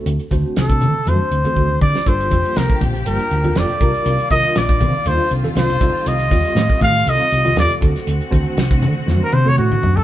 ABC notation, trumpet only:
X:1
M:4/4
L:1/16
Q:"Swing 16ths" 1/4=120
K:Dphr
V:1 name="Trumpet"
z4 A4 c6 d2 | c4 B2 z2 B4 d4- | d2 e2 d4 c2 z2 c4 | e6 f2 e4 d2 z2 |
z8 z B c _d ^F3 A |]